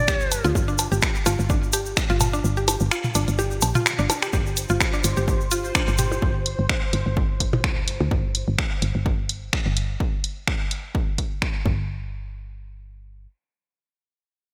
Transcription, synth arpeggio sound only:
0.08 G4
0.44 F4
0.68 D4
0.92 G4
1.26 F4
1.50 D4
1.73 G4
2.10 F4
2.33 D4
2.57 G4
2.92 F4
3.15 D4
3.39 G4
3.75 F4
3.99 D4
4.22 G4
4.33 G4
4.70 F4
4.94 D4
5.17 G4
5.52 F4
5.75 D4
5.99 G4

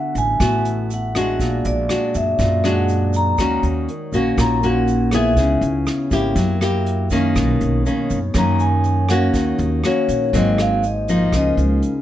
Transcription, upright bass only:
0.15 A1
0.40 A1
1.40 A#1
1.65 A#1
2.15 F#2
2.39 F#2
3.38 D#2
3.63 D#2
4.12 A#1
4.38 A#1
5.37 C#2
5.61 C#2
6.11 G#1
6.36 F#2
7.35 B1
7.61 B1
8.11 F#2
8.35 F#2
9.33 D#2
9.59 D#2
10.08 A#1
10.34 G#1
11.32 C#2
11.57 C#2

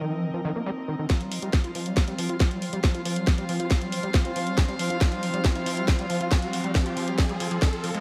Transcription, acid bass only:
0.01 D#3
0.12 F3
0.23 D#3
0.34 F3
0.45 D#3
0.55 A#3
0.66 G3
0.88 D#3
0.99 D#3
1.10 F3
1.21 G3
1.32 F3
1.42 G3
1.53 F3
1.64 F4
1.75 F3
1.86 G3
1.97 F3
2.08 G3
2.18 F3
2.29 F4
2.40 F3
2.51 G3
2.62 F3
2.73 G3
2.84 F3
2.95 F4
3.05 F3
3.16 G3
3.27 F3
3.38 G3
3.49 F3
3.60 F4
3.71 F3
3.82 G3
3.92 F3
4.03 G3
4.14 F3
4.25 F4
4.36 F3
4.47 G3
4.58 F3
4.68 G3
4.79 F3
4.90 F4
5.01 F3
5.12 G3
5.23 F3
5.34 G3
5.45 F3
5.55 F4
5.66 F3
5.77 G3
5.88 F3
5.99 G3
6.10 F3
6.21 F4
6.32 F3
6.42 G3
6.53 F3
6.64 G3
6.75 F3
6.86 F4
6.97 F3
7.08 G3
7.18 F3
7.29 G3
7.40 F3
7.51 F3
7.62 D#3
7.84 F3
7.95 G#3

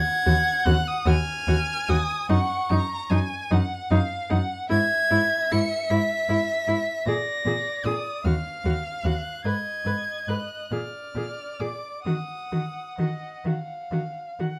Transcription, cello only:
0.27 D#2
0.66 D#2
1.06 D#2
1.48 D#2
1.89 D#2
2.30 F#2
2.71 F#2
3.11 F#2
3.51 F#2
3.91 F#2
4.31 F#2
4.71 G#2
5.11 G#2
5.52 G#2
5.91 G#2
6.29 G#2
6.68 G#2
7.06 A#2
7.46 A#2
7.85 A#2
8.25 D#2
8.65 D#2
9.04 D#2
9.45 G#2
9.85 G#2
10.28 G#2
10.71 A#2
11.15 A#2
11.60 A#2
12.06 D#3
12.52 D#3
12.99 D#3
13.45 D#3
13.91 D#3
14.40 D#3

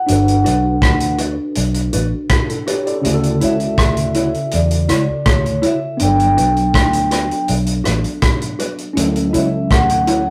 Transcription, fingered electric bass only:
0.09 G1
0.47 B1
0.82 D2
1.57 B1
1.94 A1
3.05 D2
3.43 C#2
3.79 D2
4.54 E2
4.90 C#2
5.26 D2
6.01 G1
6.39 B1
6.75 D2
7.49 B1
7.86 A1
8.97 D2
9.35 C#2
9.71 D2

